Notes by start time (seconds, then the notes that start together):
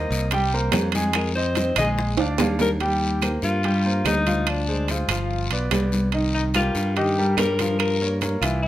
Already playing: A#3 A#4 C5 D#5
0.10 C2, high conga, short guiro
0.31 G3 G4 G5, high bongo, high conga, high timbale, long guiro
0.53 A#3 A#4 C5, high conga
0.72 F2, high bongo, low bongo, high conga, high timbale, low timbale, short guiro, claves
0.92 G#3 G#4 G#5, high conga, high timbale, short guiro
1.13 A#4, high bongo, high conga, high timbale, long guiro, claves
1.35 C4 C5 D#5, high bongo, high conga
1.55 C4 C5 D#5, high bongo, high conga, high timbale, short guiro
1.76 A#1 G#3 G#4 D#5 G#5, high bongo, high conga, low conga, high timbale, short guiro, claves
1.98 high bongo, high conga, long guiro
2.17 D2 D4 D5 F5, high conga, high timbale
2.38 D#2 D4 D5 F5, high bongo, low bongo, high conga, low timbale, short guiro, claves
2.59 A#4, high bongo, high conga, low timbale, short guiro
2.80 G3 G4 G5, high conga, high timbale, long guiro
3.02 high conga
3.22 A#3 A#4 C5, high conga, high timbale, low timbale, short guiro, claves
3.42 G2 F4, high conga, short guiro
3.63 G3 G4 G5, high conga, high timbale, long guiro
3.85 A#3 A#4 C5, high conga
4.05 D2 D#4, high conga, high timbale, low timbale, short guiro, claves
4.26 F3 F4 F5, high conga, high timbale, short guiro
4.47 D4, high conga, high timbale, long guiro, claves
4.68 G#3 G#4 C5, high conga
4.88 G#3 F4 G#4 C5, high conga, high timbale, low timbale, short guiro
5.08 G1 F3 F4 F5, high conga, high timbale, short guiro, claves
5.31 high conga, long guiro
5.50 B1 B3 B4 D5, high conga, high timbale
5.71 C2 B3 B4 D5, high conga, high timbale, low timbale, short guiro, claves
5.92 high conga, short guiro
6.12 D#3 D#4 D#5, high timbale, long guiro
6.35 D#4, high conga
6.54 G3 F4 G4 A#4, high conga, high timbale, low timbale, short guiro, claves
6.75 G2, high conga, short guiro
6.96 D#3 D#4 G4 D#5, high conga, high timbale, long guiro
7.18 G3 G4 A#4, high conga
7.37 G2 A#4, high conga, high timbale, low timbale, short guiro, claves
7.59 F3 F4 F5, high conga, high timbale, short guiro
7.79 A#4, high conga, high timbale, long guiro, claves
8.01 A#3 A#4 C#5, high conga
8.21 A#3 A#4 C#5, high conga, high timbale, low timbale, short guiro
8.41 C2 E3 E4 F4 E5, high conga, high timbale, short guiro, claves
8.62 E4, high conga, long guiro